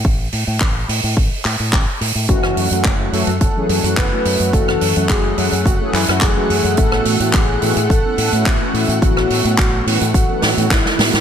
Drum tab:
HH |--o---o---o---o-|x-oxx-oxx-oxx-ox|x-oxx-oxx-oxx-ox|x-oxx-oxx-oxx-ox|
CP |----x-----x-x---|----x-------x---|----x-----x-x---|----x-------x---|
SD |----------------|-r--------------|-r---------r----|-r--------------|
BD |o---o---o---o---|o---o---o---o---|o---o---o---o---|o---o---o---o---|

HH |x-oxx-oxx-oxx-ox|
CP |----x-------x---|
SD |-r--------o-oooo|
BD |o---o---o---o---|